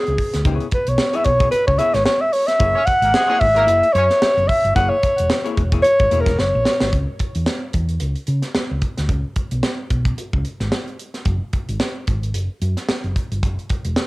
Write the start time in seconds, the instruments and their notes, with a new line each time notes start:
Already playing: alto saxophone G#4
0.06 fingered electric bass C#2, closed hi-hat
0.18 kick, open hi-hat
0.33 fingered electric bass D2, snare, closed hi-hat
0.45 fingered electric bass C#2, hollow-body jazz guitar B3 E4 G#4 C#5, kick, closed hi-hat
0.60 closed hi-hat
0.71 alto saxophone B4, kick, closed hi-hat
0.86 fingered electric bass B1, alto saxophone C#5, closed hi-hat
0.98 snare
1.13 hollow-body jazz guitar B3 E4 G#4 C#5, alto saxophone E5, closed hi-hat
1.24 fingered electric bass B1, alto saxophone C#5, kick, closed hi-hat
1.39 hollow-body jazz guitar B3 E4 G#4 C#5, kick, closed hi-hat
1.51 alto saxophone B4, closed hi-hat
1.67 fingered electric bass C#2, alto saxophone C#5, kick
1.78 hollow-body jazz guitar B3 E4 G#4 C#5, alto saxophone E5, closed hi-hat
1.94 fingered electric bass G#1, alto saxophone C#5, snare, closed hi-hat
2.05 alto saxophone C#5, snare
2.21 alto saxophone E5
2.33 alto saxophone C#5, open hi-hat
2.47 alto saxophone E5, snare, closed hi-hat
2.59 fingered electric bass F#1, hollow-body jazz guitar A#3 E4 G#4 C#5, kick, closed hi-hat
2.75 horn section C#4 C#5
2.86 alto saxophone F#5, kick, closed hi-hat
3.02 fingered electric bass G#1, horn section A#3 A#4, closed hi-hat
3.14 horn section G#3 G#4, snare
3.27 horn section G#3 G#4, hollow-body jazz guitar A#3 E4 G#4 C#5
3.40 fingered electric bass G#1, alto saxophone E5, kick, open hi-hat
3.54 hollow-body jazz guitar A#3 E4 G#4 C#5, horn section A#3 A#4, closed hi-hat
3.66 fingered electric bass F#1, hollow-body jazz guitar A#3 E4 G#4 D#5, closed hi-hat
3.83 closed hi-hat
3.93 fingered electric bass F#2, horn section C#4 C#5, alto saxophone C#5, closed hi-hat
4.10 snare, closed hi-hat
4.22 muted fingered electric bass stroke, snare
4.37 fingered electric bass F#1, closed hi-hat
4.48 alto saxophone E5, kick, open hi-hat
4.64 fingered electric bass G1, closed hi-hat
4.75 fingered electric bass F#1, hollow-body jazz guitar A#3 E4 G#4 C#5, alto saxophone F#5, kick, closed hi-hat
4.89 alto saxophone C#5
5.03 kick, closed hi-hat
5.18 fingered electric bass E1, closed hi-hat
5.30 snare
5.45 hollow-body jazz guitar A#3 E4 G#4 C#5, closed hi-hat
5.57 fingered electric bass E1, kick, closed hi-hat
5.72 hollow-body jazz guitar A#3 E4 G#4 C#5, kick, closed hi-hat
5.83 alto saxophone C#5, closed hi-hat
5.99 fingered electric bass G#1, kick, closed hi-hat
6.11 fingered electric bass E1, hollow-body jazz guitar A#3 E4 G#4 C#5, closed hi-hat
6.21 alto saxophone A#4
6.26 fingered electric bass E1, kick, snare, closed hi-hat
6.39 fingered electric bass F#1, alto saxophone C#5, snare
6.55 fingered electric bass A#1
6.66 snare
6.81 fingered electric bass G#1, snare
6.93 fingered electric bass C#2, kick, closed hi-hat
7.19 kick, closed hi-hat
7.35 fingered electric bass E2, closed hi-hat
7.47 snare
7.73 fingered electric bass E2, kick, closed hi-hat
7.88 closed hi-hat
8.00 fingered electric bass C#2, closed hi-hat
8.15 closed hi-hat
8.27 fingered electric bass C#3, closed hi-hat
8.42 snare, closed hi-hat
8.55 muted fingered electric bass stroke, snare
8.71 fingered electric bass C#2
8.81 kick, closed hi-hat
8.97 fingered electric bass D2, snare, closed hi-hat
9.09 fingered electric bass C#2, kick, closed hi-hat
9.35 kick, closed hi-hat
9.51 fingered electric bass B1, closed hi-hat
9.63 snare
9.90 fingered electric bass B1, kick, closed hi-hat
10.05 kick, closed hi-hat
10.17 muted fingered electric bass stroke, closed hi-hat
10.33 fingered electric bass C#2, kick
10.44 closed hi-hat
10.60 fingered electric bass G#1, snare, closed hi-hat
10.72 snare
10.87 closed hi-hat
10.99 closed hi-hat
11.14 snare, closed hi-hat
11.25 fingered electric bass F#1, kick, closed hi-hat
11.53 kick, closed hi-hat
11.68 fingered electric bass G#1, closed hi-hat
11.80 snare
12.07 fingered electric bass G#1, kick, closed hi-hat
12.23 closed hi-hat
12.34 fingered electric bass F#1, closed hi-hat
12.61 fingered electric bass F#2, closed hi-hat
12.77 snare, closed hi-hat
12.89 muted fingered electric bass stroke, snare
13.03 fingered electric bass F#1, closed hi-hat
13.16 kick, closed hi-hat
13.31 fingered electric bass G1, closed hi-hat
13.43 fingered electric bass F#1, kick, closed hi-hat
13.59 closed hi-hat
13.69 kick, closed hi-hat
13.84 fingered electric bass E1, closed hi-hat
13.96 snare